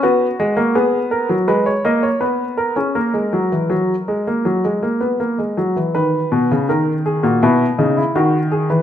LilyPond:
<<
  \new Staff \with { instrumentName = "Grand piano" } { \time 4/4 \key b \major \tempo 4 = 82 fis'4 gis'8 ais'8 b'16 cis''16 dis''16 cis''16 b'8 ais'16 gis'16 | ais'2.~ ais'8 r8 | b'4 ais'8 gis'16 fis'16 e'8 dis'16 e'16 fis'8 gis'16 b'16 | }
  \new Staff \with { instrumentName = "Grand piano" } { \clef bass \time 4/4 \key b \major b8 gis16 ais16 b8. fis16 gis8 ais8 b8. cis'16 | ais16 gis16 fis16 e16 fis8 gis16 ais16 fis16 gis16 ais16 b16 ais16 gis16 fis16 e16 | dis8 b,16 cis16 dis8. ais,16 b,8 cis8 dis8. e16 | }
>>